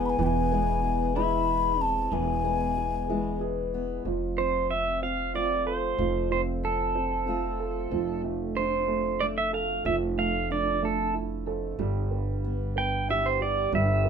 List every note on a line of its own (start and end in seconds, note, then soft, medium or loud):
0.00 0.15 E1 medium
0.00 0.18 E2 medium
0.00 0.17 E3 medium
0.00 1.15 E3 medium
0.00 0.51 G#3 medium
0.00 0.19 B3 medium
0.00 0.50 B3 medium
0.00 1.12 B3 medium
0.00 1.15 E4 medium
0.00 0.84 G#4 medium
0.00 1.16 G#4 medium
0.06 0.24 G#5 loud
0.06 0.11 B5 medium
0.19 2.08 E1 medium
0.19 2.10 E2 medium
0.19 2.11 E3 medium
0.19 1.80 B3 medium
0.23 0.28 G5 medium
0.23 1.18 G#5 loud
0.52 1.16 G#3 medium
0.52 1.16 B3 medium
0.84 2.09 G#4 medium
1.15 2.08 E3 medium
1.15 2.09 G#3 medium
1.15 1.81 E4 medium
1.15 3.08 E4 medium
1.15 1.49 G#4 medium
1.15 1.83 B5 medium
1.81 2.13 C4 medium
1.81 2.15 A5 medium
2.11 4.01 E1 medium
2.11 4.05 E2 medium
2.11 4.06 E3 medium
2.11 3.73 B3 medium
2.11 3.42 B3 medium
2.11 3.42 G#5 medium
2.44 3.09 G#3 medium
2.44 3.08 B3 medium
2.77 4.02 G#4 medium
3.09 4.02 E3 medium
3.09 4.02 G#3 medium
3.09 4.12 B3 medium
3.09 4.12 E4 medium
3.09 3.39 G#4 medium
3.41 4.12 G#4 medium
3.74 4.06 B3 medium
4.05 5.95 F1 medium
4.05 5.98 F2 medium
4.05 5.97 F3 medium
4.38 5.01 C4 medium
4.38 4.71 C5 medium
4.70 5.35 C4 soft
4.70 5.00 E5 medium
5.03 6.29 C4 medium
5.03 5.33 F5 medium
5.34 7.27 A3 medium
5.34 5.96 C4 medium
5.34 7.26 F4 medium
5.34 7.28 F4 medium
5.34 5.65 D5 loud
5.66 7.58 A4 medium
5.66 6.31 C5 medium
5.98 7.88 F1 medium
5.98 7.91 F2 medium
5.98 7.90 F3 medium
6.31 6.94 C4 medium
6.31 6.41 C5 medium
6.64 7.27 C4 medium
6.64 8.21 A4 medium
6.95 7.99 C4 medium
7.27 9.21 A3 medium
7.27 7.89 C4 medium
7.27 7.99 F4 medium
7.27 10.78 F4 medium
7.60 7.99 A4 medium
7.91 9.82 F1 medium
7.91 9.81 F2 medium
7.91 9.84 F3 medium
8.24 8.87 A3 medium
8.56 9.21 D4 medium
8.56 9.23 C5 medium
8.88 10.16 A3 medium
9.20 9.82 A3 medium
9.20 9.82 D4 medium
9.20 9.25 D5 medium
9.38 9.53 E5 medium
9.53 11.46 A4 medium
9.53 9.86 F5 medium
9.85 11.75 F1 medium
9.85 11.14 F2 medium
9.85 11.79 F3 medium
9.85 9.95 E5 loud
10.18 10.81 A3 medium
10.18 10.48 F5 medium
10.51 11.76 D4 medium
10.51 10.84 D5 medium
10.83 11.86 A3 medium
10.83 11.14 A4 medium
11.14 11.85 E4 medium
11.46 11.79 F2 medium
11.46 11.86 A4 medium
11.79 13.69 G1 medium
11.79 13.69 G2 medium
11.79 13.71 G3 medium
12.11 12.74 B3 medium
12.44 13.08 B3 medium
12.76 14.03 B3 medium
12.76 13.10 G5 loud
13.08 14.09 G3 medium
13.08 14.09 B3 medium
13.08 14.09 E4 medium
13.08 13.70 G4 medium
13.08 13.26 E5 medium
13.26 13.40 C5 medium
13.41 14.09 G4 medium
13.41 13.75 D5 medium
13.72 14.09 G1 medium
13.72 14.09 G2 medium
13.72 14.09 G3 medium
13.72 14.09 E5 medium
14.05 14.09 B3 medium